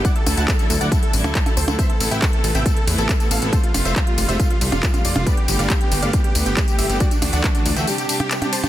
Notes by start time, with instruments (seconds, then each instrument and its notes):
0.05 string section D3 F#3 A3 E4, supersaw synth D5 F#5, kick, closed hi-hat, tambourine
0.16 supersaw synth A4, closed hi-hat
0.26 analog synth bass D2, string section D3 F#3 A3 E4, supersaw synth A4, open hi-hat, tambourine, percussion blips
0.37 analog synth bass D2, supersaw synth F#5 A5, closed hi-hat, tambourine
0.48 supersaw synth A4, kick, clap, closed hi-hat, tambourine
0.59 string section D3 F#3 A3 E4, supersaw synth A4, closed hi-hat, tambourine
0.70 analog synth bass D2, supersaw synth A4, open hi-hat, tambourine
0.81 analog synth bass D2, string section D3 F#3 A3 E4, supersaw synth D5 F#5, closed hi-hat, tambourine
0.92 string section D3 F#3 A3 E4, supersaw synth A4, kick, closed hi-hat, tambourine
1.03 supersaw synth A4, closed hi-hat
1.13 analog synth bass A1, string section D3 F#3 A3 E4, open hi-hat, tambourine
1.24 analog synth bass D2, supersaw synth A4, closed hi-hat, tambourine, percussion blips
1.35 supersaw synth A4, kick, clap, closed hi-hat, tambourine
1.46 string section D3 F#3 A3 E4, supersaw synth A4, closed hi-hat, tambourine, percussion blips
1.57 analog synth bass D2, supersaw synth A4 C5, open hi-hat, tambourine
1.68 analog synth bass D2, string section D3 F#3 A3 E4, supersaw synth A4, closed hi-hat, tambourine, percussion blips
1.79 string section C3 A3 B3 E4, supersaw synth C5 E5, kick, closed hi-hat, tambourine
1.89 supersaw synth A4, closed hi-hat
2.00 analog synth bass A1, string section C3 A3 B3 E4, supersaw synth A4, open hi-hat, ride, tambourine
2.11 analog synth bass A1, supersaw synth E5 G5, closed hi-hat, tambourine
2.22 supersaw synth A4, kick, clap, closed hi-hat, tambourine
2.33 string section C3 A3 B3 E4, supersaw synth A4, closed hi-hat
2.44 analog synth bass A1, supersaw synth A4, open hi-hat, ride, tambourine
2.55 analog synth bass A1, string section C3 A3 B3 E4, supersaw synth E5 G5, closed hi-hat, tambourine
2.66 string section C3 A3 B3 E4, supersaw synth A4, kick, closed hi-hat, tambourine
2.77 supersaw synth A4, closed hi-hat
2.87 analog synth bass E2, string section C3 A3 B3 E4, open hi-hat, ride, tambourine
2.98 analog synth bass A1, supersaw synth A4, closed hi-hat, tambourine
3.09 kick, clap, closed hi-hat, tambourine
3.20 string section C3 A3 B3 E4, supersaw synth A4, closed hi-hat, tambourine
3.31 analog synth bass A1, supersaw synth A4 F5, open hi-hat, ride, tambourine
3.42 analog synth bass A1, string section C3 A3 B3 E4, supersaw synth A4, closed hi-hat, tambourine
3.53 string section C3 G3 A3 F4, supersaw synth A4 C5, kick, closed hi-hat, tambourine
3.64 supersaw synth F4, closed hi-hat
3.74 analog synth bass F1, string section C3 G3 A3 F4, supersaw synth F4, open hi-hat, ride, tambourine, percussion blips
3.85 analog synth bass F1, supersaw synth C5 E5, closed hi-hat, tambourine
3.96 supersaw synth F4, kick, clap, closed hi-hat, tambourine
4.07 string section C3 G3 A3 F4, supersaw synth F4, closed hi-hat
4.18 analog synth bass F1, supersaw synth F4, open hi-hat, ride, tambourine
4.28 analog synth bass F1, string section C3 G3 A3 F4, supersaw synth C5 E5, closed hi-hat, tambourine
4.39 string section C3 G3 A3 F4, supersaw synth F4, kick, closed hi-hat, tambourine
4.50 supersaw synth F4, closed hi-hat
4.61 analog synth bass C2, string section C3 G3 A3 F4, open hi-hat, ride, tambourine
4.72 analog synth bass F1, supersaw synth F4, closed hi-hat, tambourine, percussion blips
4.83 supersaw synth F4, kick, clap, closed hi-hat, tambourine
4.94 string section C3 G3 A3 F4, supersaw synth F4, closed hi-hat, tambourine, percussion blips
5.05 analog synth bass F1, supersaw synth F4 D5, open hi-hat, ride, tambourine
5.16 analog synth bass F1, string section C3 G3 A3 F4, supersaw synth F4, closed hi-hat, tambourine, percussion blips
5.26 string section D3 A3 B3 G4, supersaw synth B4 D5, kick, closed hi-hat, tambourine
5.37 supersaw synth G4, closed hi-hat
5.48 analog synth bass G1, string section D3 A3 B3 G4, supersaw synth G4, open hi-hat, ride, tambourine
5.59 analog synth bass G1, supersaw synth D5 F5, closed hi-hat, tambourine
5.70 supersaw synth G4, kick, clap, closed hi-hat, tambourine
5.81 string section D3 A3 B3 G4, supersaw synth G4, closed hi-hat
5.92 analog synth bass G1, supersaw synth G4, open hi-hat, ride, tambourine
6.02 analog synth bass G1, string section D3 A3 B3 G4, supersaw synth D5 F5, closed hi-hat, tambourine
6.13 string section D3 A3 B3 G4, supersaw synth G4, kick, closed hi-hat, tambourine
6.24 supersaw synth G4, closed hi-hat
6.35 analog synth bass D2, string section D3 A3 B3 G4, open hi-hat, ride, tambourine
6.46 analog synth bass G1, supersaw synth G4, closed hi-hat, tambourine
6.57 supersaw synth G4, kick, clap, closed hi-hat, tambourine
6.67 string section D3 A3 B3 G4, supersaw synth G4, closed hi-hat, tambourine
6.78 analog synth bass G1, supersaw synth G4 E5, open hi-hat, ride, tambourine
6.89 analog synth bass G1, string section D3 A3 B3 G4, supersaw synth G4, closed hi-hat, tambourine
7.00 string section E3 A3 D4 F#4, supersaw synth F#4 D5, kick, closed hi-hat, tambourine
7.11 supersaw synth D4, closed hi-hat, tambourine
7.22 analog synth bass D2, string section E3 A3 D4 F#4, supersaw synth D4, open hi-hat, ride, tambourine, percussion blips
7.33 analog synth bass D2, supersaw synth D5 F#5, closed hi-hat, tambourine
7.44 supersaw synth D4, kick, clap, closed hi-hat, tambourine
7.55 string section E3 A3 D4 F#4, supersaw synth D4, closed hi-hat, tambourine
7.65 analog synth bass D2, supersaw synth D4, open hi-hat, ride, tambourine
7.76 analog synth bass D2, string section E3 A3 D4 F#4, supersaw synth E5 G5, closed hi-hat, tambourine
7.87 string section C3 G3 D4 G4, supersaw synth G4, open hi-hat, tambourine
7.98 supersaw synth G4, closed hi-hat, tambourine
8.09 string section C3 G3 D4 G4, open hi-hat, ride, tambourine
8.20 supersaw synth G4, closed hi-hat, tambourine, percussion blips
8.31 supersaw synth G4, clap, closed hi-hat, tambourine
8.42 string section C3 G3 D4 G4, supersaw synth G4, closed hi-hat, tambourine, percussion blips
8.53 supersaw synth C5 A5, open hi-hat, ride, tambourine
8.63 string section C3 G3 D4 G4, supersaw synth G4, closed hi-hat, tambourine, percussion blips